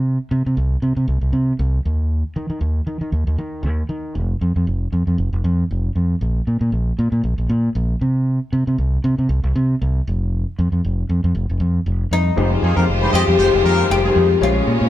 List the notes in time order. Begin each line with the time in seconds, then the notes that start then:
Already playing: C3
0.31 C3
0.46 C3
0.57 C2
0.82 C3
0.97 C3
1.08 C2
1.21 C2
1.33 C3
1.59 C2
1.85 D#2
2.36 D#3
2.50 D#3
2.61 D#2
2.87 D#3
3.01 D#3
3.12 D#2
3.27 D#2
3.38 D#3
3.63 D#2
3.89 D#3
4.15 F1
4.41 F2
4.56 F2
4.67 F1
4.92 F2
5.07 F2
5.18 F1
5.33 F1
5.44 F2
5.71 F1
5.96 F2
6.21 A#1
6.47 A#2
6.61 A#2
6.72 A#1
6.99 A#2
7.12 A#2
7.24 A#1
7.38 A#1
7.49 A#2
7.75 A#1
8.01 C3
8.53 C3
8.67 C3
8.78 C2
9.04 C3
9.18 C3
9.29 C2
9.44 C2
9.56 C3
9.82 C2
10.07 F1
10.59 F2
10.72 F2
10.85 F1
11.09 F2
11.24 F2
11.35 F1
11.50 F1
11.60 F2
11.86 F1
12.11 F2 D#4
12.36 F1 D#3 F3 G#3 D#4 F4 G4 G#4 C5
12.52 muted clean electric guitar stroke
12.62 F2 D#3 C4 G#4, muted clean electric guitar stroke
12.76 F2 G#3 A#3 D#4 G4 A#4 C5
12.88 F1, muted clean electric guitar stroke
13.01 G#3 D#4 G4 C5
13.13 F2 C4 G4 G#4 D#5, muted clean electric guitar stroke
13.28 F2, muted clean electric guitar stroke
13.38 F1 G#3 D#4 G4 C5
13.53 F1, muted clean electric guitar stroke
13.63 F2 F3 A#3 D#4 G4 A#4, muted clean electric guitar stroke
13.80 G#3 D#4 G4 C5
13.90 F1 G4, muted clean electric guitar stroke
14.05 D#3 G#3 C4 D#4 G4 G#4 C5
14.15 F2 G#3 D#4 G4 C5
14.30 muted clean electric guitar stroke
14.40 A#1 A#2 G#3 A#3 C#4 F4 C5 C#5
14.56 muted clean electric guitar stroke
14.66 A#2, muted clean electric guitar stroke
14.80 A#2 G#3 C#4 F4 C5